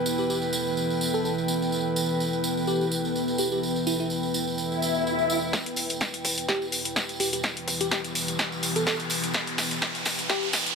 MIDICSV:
0, 0, Header, 1, 7, 480
1, 0, Start_track
1, 0, Key_signature, 1, "minor"
1, 0, Tempo, 476190
1, 1738, Time_signature, 4, 2, 24, 8
1, 10836, End_track
2, 0, Start_track
2, 0, Title_t, "Analog synth pad"
2, 0, Program_c, 0, 89
2, 0, Note_on_c, 0, 64, 94
2, 0, Note_on_c, 0, 71, 91
2, 0, Note_on_c, 0, 79, 76
2, 10836, Note_off_c, 0, 64, 0
2, 10836, Note_off_c, 0, 71, 0
2, 10836, Note_off_c, 0, 79, 0
2, 10836, End_track
3, 0, Start_track
3, 0, Title_t, "FM electric piano"
3, 0, Program_c, 1, 5
3, 190, Note_on_c, 1, 67, 82
3, 259, Note_off_c, 1, 67, 0
3, 298, Note_on_c, 1, 67, 74
3, 382, Note_off_c, 1, 67, 0
3, 1150, Note_on_c, 1, 69, 86
3, 1219, Note_off_c, 1, 69, 0
3, 1257, Note_on_c, 1, 69, 73
3, 1342, Note_off_c, 1, 69, 0
3, 2697, Note_on_c, 1, 67, 87
3, 2882, Note_off_c, 1, 67, 0
3, 3417, Note_on_c, 1, 67, 86
3, 3501, Note_off_c, 1, 67, 0
3, 3548, Note_on_c, 1, 67, 74
3, 3618, Note_off_c, 1, 67, 0
3, 3897, Note_on_c, 1, 64, 84
3, 3982, Note_off_c, 1, 64, 0
3, 4030, Note_on_c, 1, 64, 72
3, 4099, Note_off_c, 1, 64, 0
3, 6538, Note_on_c, 1, 67, 93
3, 6722, Note_off_c, 1, 67, 0
3, 7258, Note_on_c, 1, 67, 85
3, 7342, Note_off_c, 1, 67, 0
3, 7390, Note_on_c, 1, 67, 75
3, 7459, Note_off_c, 1, 67, 0
3, 7870, Note_on_c, 1, 67, 89
3, 7939, Note_off_c, 1, 67, 0
3, 7979, Note_on_c, 1, 67, 72
3, 8062, Note_off_c, 1, 67, 0
3, 8830, Note_on_c, 1, 69, 88
3, 8899, Note_off_c, 1, 69, 0
3, 8939, Note_on_c, 1, 69, 74
3, 9023, Note_off_c, 1, 69, 0
3, 10380, Note_on_c, 1, 67, 93
3, 10564, Note_off_c, 1, 67, 0
3, 10836, End_track
4, 0, Start_track
4, 0, Title_t, "Ambient pad"
4, 0, Program_c, 2, 92
4, 0, Note_on_c, 2, 52, 78
4, 0, Note_on_c, 2, 59, 70
4, 0, Note_on_c, 2, 69, 85
4, 5538, Note_off_c, 2, 52, 0
4, 5538, Note_off_c, 2, 59, 0
4, 5564, Note_off_c, 2, 69, 0
4, 5578, Note_on_c, 2, 52, 75
4, 5578, Note_on_c, 2, 59, 73
4, 5578, Note_on_c, 2, 67, 86
4, 10836, Note_off_c, 2, 52, 0
4, 10836, Note_off_c, 2, 59, 0
4, 10836, Note_off_c, 2, 67, 0
4, 10836, End_track
5, 0, Start_track
5, 0, Title_t, "Riser"
5, 0, Program_c, 3, 103
5, 5577, Note_on_c, 3, 60, 82
5, 10836, Note_off_c, 3, 60, 0
5, 10836, End_track
6, 0, Start_track
6, 0, Title_t, "Swell"
6, 0, Program_c, 4, 103
6, 4617, Note_on_c, 4, 60, 73
6, 5577, Note_off_c, 4, 60, 0
6, 10836, End_track
7, 0, Start_track
7, 0, Title_t, "Drums"
7, 59, Note_on_c, 9, 54, 91
7, 160, Note_off_c, 9, 54, 0
7, 182, Note_on_c, 9, 54, 38
7, 283, Note_off_c, 9, 54, 0
7, 302, Note_on_c, 9, 54, 52
7, 403, Note_off_c, 9, 54, 0
7, 420, Note_on_c, 9, 54, 32
7, 521, Note_off_c, 9, 54, 0
7, 532, Note_on_c, 9, 54, 85
7, 632, Note_off_c, 9, 54, 0
7, 672, Note_on_c, 9, 54, 34
7, 773, Note_off_c, 9, 54, 0
7, 777, Note_on_c, 9, 54, 47
7, 878, Note_off_c, 9, 54, 0
7, 910, Note_on_c, 9, 54, 35
7, 1011, Note_off_c, 9, 54, 0
7, 1018, Note_on_c, 9, 54, 87
7, 1118, Note_off_c, 9, 54, 0
7, 1157, Note_on_c, 9, 54, 35
7, 1258, Note_off_c, 9, 54, 0
7, 1261, Note_on_c, 9, 54, 49
7, 1361, Note_off_c, 9, 54, 0
7, 1394, Note_on_c, 9, 54, 31
7, 1494, Note_off_c, 9, 54, 0
7, 1494, Note_on_c, 9, 54, 95
7, 1595, Note_off_c, 9, 54, 0
7, 1636, Note_on_c, 9, 54, 37
7, 1736, Note_off_c, 9, 54, 0
7, 1736, Note_on_c, 9, 54, 52
7, 1837, Note_off_c, 9, 54, 0
7, 1978, Note_on_c, 9, 54, 91
7, 2079, Note_off_c, 9, 54, 0
7, 2106, Note_on_c, 9, 54, 36
7, 2207, Note_off_c, 9, 54, 0
7, 2220, Note_on_c, 9, 54, 52
7, 2321, Note_off_c, 9, 54, 0
7, 2351, Note_on_c, 9, 54, 36
7, 2452, Note_off_c, 9, 54, 0
7, 2457, Note_on_c, 9, 54, 85
7, 2558, Note_off_c, 9, 54, 0
7, 2593, Note_on_c, 9, 54, 37
7, 2694, Note_off_c, 9, 54, 0
7, 2694, Note_on_c, 9, 54, 46
7, 2795, Note_off_c, 9, 54, 0
7, 2834, Note_on_c, 9, 54, 33
7, 2935, Note_off_c, 9, 54, 0
7, 2938, Note_on_c, 9, 54, 87
7, 3039, Note_off_c, 9, 54, 0
7, 3073, Note_on_c, 9, 54, 38
7, 3174, Note_off_c, 9, 54, 0
7, 3181, Note_on_c, 9, 54, 45
7, 3281, Note_off_c, 9, 54, 0
7, 3306, Note_on_c, 9, 54, 33
7, 3406, Note_off_c, 9, 54, 0
7, 3409, Note_on_c, 9, 54, 92
7, 3510, Note_off_c, 9, 54, 0
7, 3547, Note_on_c, 9, 54, 34
7, 3648, Note_off_c, 9, 54, 0
7, 3662, Note_on_c, 9, 54, 51
7, 3763, Note_off_c, 9, 54, 0
7, 3790, Note_on_c, 9, 54, 34
7, 3891, Note_off_c, 9, 54, 0
7, 3899, Note_on_c, 9, 54, 85
7, 4000, Note_off_c, 9, 54, 0
7, 4031, Note_on_c, 9, 54, 35
7, 4132, Note_off_c, 9, 54, 0
7, 4132, Note_on_c, 9, 54, 50
7, 4233, Note_off_c, 9, 54, 0
7, 4265, Note_on_c, 9, 54, 36
7, 4366, Note_off_c, 9, 54, 0
7, 4377, Note_on_c, 9, 54, 89
7, 4478, Note_off_c, 9, 54, 0
7, 4511, Note_on_c, 9, 54, 37
7, 4611, Note_off_c, 9, 54, 0
7, 4616, Note_on_c, 9, 54, 55
7, 4716, Note_off_c, 9, 54, 0
7, 4756, Note_on_c, 9, 54, 35
7, 4857, Note_off_c, 9, 54, 0
7, 4862, Note_on_c, 9, 54, 83
7, 4962, Note_off_c, 9, 54, 0
7, 4985, Note_on_c, 9, 54, 41
7, 5086, Note_off_c, 9, 54, 0
7, 5109, Note_on_c, 9, 54, 53
7, 5210, Note_off_c, 9, 54, 0
7, 5228, Note_on_c, 9, 54, 32
7, 5329, Note_off_c, 9, 54, 0
7, 5339, Note_on_c, 9, 54, 94
7, 5440, Note_off_c, 9, 54, 0
7, 5464, Note_on_c, 9, 54, 34
7, 5565, Note_off_c, 9, 54, 0
7, 5576, Note_on_c, 9, 38, 47
7, 5577, Note_on_c, 9, 36, 120
7, 5584, Note_on_c, 9, 54, 57
7, 5677, Note_off_c, 9, 38, 0
7, 5678, Note_off_c, 9, 36, 0
7, 5685, Note_off_c, 9, 54, 0
7, 5709, Note_on_c, 9, 42, 56
7, 5809, Note_off_c, 9, 42, 0
7, 5809, Note_on_c, 9, 54, 88
7, 5817, Note_on_c, 9, 46, 103
7, 5910, Note_off_c, 9, 54, 0
7, 5918, Note_off_c, 9, 46, 0
7, 5943, Note_on_c, 9, 54, 34
7, 5948, Note_on_c, 9, 42, 68
7, 6044, Note_off_c, 9, 54, 0
7, 6049, Note_off_c, 9, 42, 0
7, 6054, Note_on_c, 9, 54, 56
7, 6057, Note_on_c, 9, 36, 117
7, 6057, Note_on_c, 9, 38, 52
7, 6155, Note_off_c, 9, 54, 0
7, 6158, Note_off_c, 9, 36, 0
7, 6158, Note_off_c, 9, 38, 0
7, 6187, Note_on_c, 9, 54, 35
7, 6188, Note_on_c, 9, 42, 55
7, 6288, Note_off_c, 9, 54, 0
7, 6289, Note_off_c, 9, 42, 0
7, 6297, Note_on_c, 9, 36, 57
7, 6297, Note_on_c, 9, 46, 107
7, 6303, Note_on_c, 9, 54, 97
7, 6397, Note_off_c, 9, 46, 0
7, 6398, Note_off_c, 9, 36, 0
7, 6403, Note_off_c, 9, 54, 0
7, 6428, Note_on_c, 9, 42, 65
7, 6430, Note_on_c, 9, 54, 40
7, 6529, Note_off_c, 9, 42, 0
7, 6531, Note_off_c, 9, 54, 0
7, 6537, Note_on_c, 9, 36, 118
7, 6537, Note_on_c, 9, 38, 53
7, 6538, Note_on_c, 9, 54, 47
7, 6638, Note_off_c, 9, 36, 0
7, 6638, Note_off_c, 9, 38, 0
7, 6639, Note_off_c, 9, 54, 0
7, 6671, Note_on_c, 9, 54, 33
7, 6772, Note_off_c, 9, 54, 0
7, 6776, Note_on_c, 9, 46, 109
7, 6782, Note_on_c, 9, 54, 92
7, 6877, Note_off_c, 9, 46, 0
7, 6883, Note_off_c, 9, 54, 0
7, 6905, Note_on_c, 9, 54, 37
7, 6909, Note_on_c, 9, 42, 68
7, 7006, Note_off_c, 9, 54, 0
7, 7009, Note_off_c, 9, 42, 0
7, 7017, Note_on_c, 9, 36, 118
7, 7017, Note_on_c, 9, 38, 55
7, 7021, Note_on_c, 9, 54, 55
7, 7118, Note_off_c, 9, 36, 0
7, 7118, Note_off_c, 9, 38, 0
7, 7122, Note_off_c, 9, 54, 0
7, 7148, Note_on_c, 9, 54, 36
7, 7149, Note_on_c, 9, 42, 39
7, 7249, Note_off_c, 9, 54, 0
7, 7250, Note_off_c, 9, 42, 0
7, 7257, Note_on_c, 9, 46, 102
7, 7263, Note_on_c, 9, 54, 90
7, 7358, Note_off_c, 9, 46, 0
7, 7363, Note_off_c, 9, 54, 0
7, 7389, Note_on_c, 9, 42, 70
7, 7391, Note_on_c, 9, 54, 39
7, 7490, Note_off_c, 9, 42, 0
7, 7492, Note_off_c, 9, 54, 0
7, 7493, Note_on_c, 9, 54, 54
7, 7497, Note_on_c, 9, 36, 125
7, 7498, Note_on_c, 9, 38, 59
7, 7594, Note_off_c, 9, 54, 0
7, 7598, Note_off_c, 9, 36, 0
7, 7598, Note_off_c, 9, 38, 0
7, 7629, Note_on_c, 9, 42, 57
7, 7730, Note_off_c, 9, 42, 0
7, 7737, Note_on_c, 9, 36, 64
7, 7738, Note_on_c, 9, 46, 108
7, 7738, Note_on_c, 9, 54, 88
7, 7838, Note_off_c, 9, 36, 0
7, 7839, Note_off_c, 9, 46, 0
7, 7839, Note_off_c, 9, 54, 0
7, 7868, Note_on_c, 9, 54, 36
7, 7869, Note_on_c, 9, 42, 70
7, 7969, Note_off_c, 9, 54, 0
7, 7970, Note_off_c, 9, 42, 0
7, 7977, Note_on_c, 9, 36, 123
7, 7978, Note_on_c, 9, 38, 66
7, 7980, Note_on_c, 9, 54, 59
7, 8078, Note_off_c, 9, 36, 0
7, 8079, Note_off_c, 9, 38, 0
7, 8080, Note_off_c, 9, 54, 0
7, 8109, Note_on_c, 9, 42, 54
7, 8113, Note_on_c, 9, 54, 41
7, 8210, Note_off_c, 9, 42, 0
7, 8214, Note_off_c, 9, 54, 0
7, 8218, Note_on_c, 9, 46, 109
7, 8223, Note_on_c, 9, 54, 90
7, 8318, Note_off_c, 9, 46, 0
7, 8324, Note_off_c, 9, 54, 0
7, 8349, Note_on_c, 9, 42, 65
7, 8354, Note_on_c, 9, 54, 37
7, 8450, Note_off_c, 9, 42, 0
7, 8455, Note_off_c, 9, 54, 0
7, 8455, Note_on_c, 9, 54, 52
7, 8457, Note_on_c, 9, 36, 124
7, 8458, Note_on_c, 9, 38, 69
7, 8556, Note_off_c, 9, 54, 0
7, 8558, Note_off_c, 9, 36, 0
7, 8559, Note_off_c, 9, 38, 0
7, 8591, Note_on_c, 9, 54, 37
7, 8691, Note_off_c, 9, 54, 0
7, 8698, Note_on_c, 9, 46, 115
7, 8701, Note_on_c, 9, 54, 96
7, 8799, Note_off_c, 9, 46, 0
7, 8802, Note_off_c, 9, 54, 0
7, 8830, Note_on_c, 9, 42, 65
7, 8831, Note_on_c, 9, 54, 45
7, 8930, Note_off_c, 9, 42, 0
7, 8932, Note_off_c, 9, 54, 0
7, 8937, Note_on_c, 9, 36, 127
7, 8939, Note_on_c, 9, 38, 70
7, 8942, Note_on_c, 9, 54, 59
7, 9038, Note_off_c, 9, 36, 0
7, 9039, Note_off_c, 9, 38, 0
7, 9043, Note_off_c, 9, 54, 0
7, 9067, Note_on_c, 9, 54, 38
7, 9070, Note_on_c, 9, 42, 37
7, 9168, Note_off_c, 9, 54, 0
7, 9170, Note_on_c, 9, 54, 105
7, 9171, Note_off_c, 9, 42, 0
7, 9178, Note_on_c, 9, 46, 104
7, 9271, Note_off_c, 9, 54, 0
7, 9279, Note_off_c, 9, 46, 0
7, 9308, Note_on_c, 9, 54, 39
7, 9310, Note_on_c, 9, 42, 67
7, 9409, Note_off_c, 9, 54, 0
7, 9410, Note_on_c, 9, 54, 55
7, 9411, Note_off_c, 9, 42, 0
7, 9418, Note_on_c, 9, 36, 127
7, 9419, Note_on_c, 9, 38, 74
7, 9511, Note_off_c, 9, 54, 0
7, 9518, Note_off_c, 9, 36, 0
7, 9519, Note_off_c, 9, 38, 0
7, 9550, Note_on_c, 9, 42, 54
7, 9651, Note_off_c, 9, 42, 0
7, 9658, Note_on_c, 9, 38, 76
7, 9658, Note_on_c, 9, 46, 109
7, 9663, Note_on_c, 9, 54, 98
7, 9759, Note_off_c, 9, 38, 0
7, 9759, Note_off_c, 9, 46, 0
7, 9763, Note_off_c, 9, 54, 0
7, 9790, Note_on_c, 9, 42, 64
7, 9792, Note_on_c, 9, 54, 45
7, 9890, Note_off_c, 9, 42, 0
7, 9892, Note_off_c, 9, 54, 0
7, 9895, Note_on_c, 9, 54, 51
7, 9898, Note_on_c, 9, 36, 127
7, 9898, Note_on_c, 9, 38, 84
7, 9996, Note_off_c, 9, 54, 0
7, 9998, Note_off_c, 9, 36, 0
7, 9999, Note_off_c, 9, 38, 0
7, 10030, Note_on_c, 9, 42, 53
7, 10036, Note_on_c, 9, 54, 39
7, 10130, Note_off_c, 9, 42, 0
7, 10134, Note_off_c, 9, 54, 0
7, 10134, Note_on_c, 9, 54, 99
7, 10138, Note_on_c, 9, 36, 67
7, 10138, Note_on_c, 9, 38, 85
7, 10138, Note_on_c, 9, 46, 111
7, 10235, Note_off_c, 9, 54, 0
7, 10238, Note_off_c, 9, 36, 0
7, 10239, Note_off_c, 9, 38, 0
7, 10239, Note_off_c, 9, 46, 0
7, 10270, Note_on_c, 9, 42, 67
7, 10274, Note_on_c, 9, 54, 44
7, 10371, Note_off_c, 9, 42, 0
7, 10375, Note_off_c, 9, 54, 0
7, 10378, Note_on_c, 9, 36, 124
7, 10378, Note_on_c, 9, 38, 86
7, 10380, Note_on_c, 9, 54, 57
7, 10479, Note_off_c, 9, 36, 0
7, 10479, Note_off_c, 9, 38, 0
7, 10481, Note_off_c, 9, 54, 0
7, 10509, Note_on_c, 9, 54, 40
7, 10610, Note_off_c, 9, 54, 0
7, 10614, Note_on_c, 9, 54, 103
7, 10618, Note_on_c, 9, 38, 83
7, 10618, Note_on_c, 9, 46, 115
7, 10715, Note_off_c, 9, 54, 0
7, 10718, Note_off_c, 9, 38, 0
7, 10718, Note_off_c, 9, 46, 0
7, 10750, Note_on_c, 9, 42, 63
7, 10750, Note_on_c, 9, 54, 38
7, 10836, Note_off_c, 9, 42, 0
7, 10836, Note_off_c, 9, 54, 0
7, 10836, End_track
0, 0, End_of_file